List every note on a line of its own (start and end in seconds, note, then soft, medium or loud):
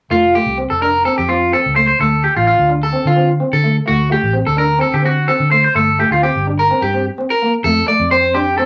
0.10 0.38 F1 medium
0.10 0.23 A3 medium
0.10 0.33 F4 medium
0.35 0.47 A3 medium
0.35 0.57 G4 medium
0.46 0.64 C2 medium
0.58 0.70 C4 medium
0.70 1.06 F1 medium
0.70 0.81 A4 medium
0.81 0.94 D4 medium
0.81 1.04 A#4 medium
1.05 1.17 C4 medium
1.05 1.17 A4 medium
1.18 1.54 F2 medium
1.18 1.28 G4 medium
1.29 1.41 C4 medium
1.29 1.51 F4 medium
1.53 1.65 C4 medium
1.53 1.75 A4 medium
1.66 1.92 C#2 medium
1.76 1.88 A3 medium
1.76 1.86 C5 medium
1.87 1.99 C5 medium
1.99 2.27 D2 medium
1.99 2.13 A3 medium
1.99 2.22 A4 medium
2.24 2.35 G4 medium
2.36 2.54 A1 medium
2.36 2.46 F4 medium
2.47 2.69 F4 medium
2.58 2.94 D2 medium
2.69 2.82 D4 medium
2.83 3.05 A4 medium
2.93 3.05 C4 medium
3.05 3.41 D3 medium
3.05 3.29 F4 medium
3.16 3.29 C4 medium
3.40 3.53 C4 medium
3.53 3.79 D3 medium
3.53 3.76 A4 medium
3.64 3.76 A3 medium
3.86 4.16 D2 medium
3.86 3.99 A3 medium
3.86 4.10 F#4 medium
4.10 4.22 A3 medium
4.10 4.34 G4 medium
4.23 4.41 A1 medium
4.33 4.46 C4 medium
4.46 4.82 D2 medium
4.46 4.58 A4 medium
4.57 4.69 D4 medium
4.57 4.81 A#4 medium
4.79 4.92 C4 medium
4.79 4.93 A4 medium
4.93 5.29 D3 medium
4.93 5.05 G4 medium
5.02 5.15 C4 medium
5.02 5.28 F#4 medium
5.28 5.40 C4 medium
5.28 5.51 A4 medium
5.40 5.67 D3 medium
5.51 5.64 A3 medium
5.51 5.63 C5 medium
5.64 5.75 C5 medium
5.75 6.02 G1 medium
5.75 5.88 A3 medium
5.75 5.98 A4 medium
5.99 6.11 A3 medium
5.99 6.11 G4 medium
6.11 6.29 D2 medium
6.11 6.23 F4 medium
6.22 6.35 C4 medium
6.22 6.46 G4 medium
6.35 6.71 G1 medium
6.47 6.59 D4 medium
6.59 6.81 A#4 medium
6.71 6.83 C4 medium
6.82 7.08 G2 medium
6.82 7.05 G4 medium
6.94 7.06 C4 medium
7.18 7.30 C4 medium
7.30 7.52 A#4 medium
7.42 7.54 A#3 medium
7.64 7.82 F2 loud
7.64 7.77 A3 medium
7.64 7.86 A4 medium
7.88 8.00 A3 medium
7.88 8.10 D5 medium
8.00 8.61 F2 medium
8.11 8.24 C4 medium
8.11 8.33 C5 medium
8.34 8.46 D4 medium
8.34 8.57 G4 medium
8.58 8.66 C4 medium
8.58 8.66 A4 medium